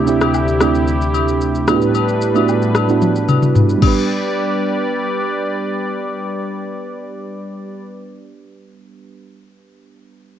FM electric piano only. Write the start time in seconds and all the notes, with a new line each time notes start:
Already playing: A3 C4 D4 E4 G4
0.06 A3 C4 D4 E4 G4
0.60 A3 C4 D4 E4 G4
1.67 A3 B3 D4 E4 F#4
1.76 G4
2.35 A3 B3 D4 E4 F#4
2.88 A3 B3 D4 E4 F#4
3.78 G3 B3
3.83 D4 G4
3.87 B4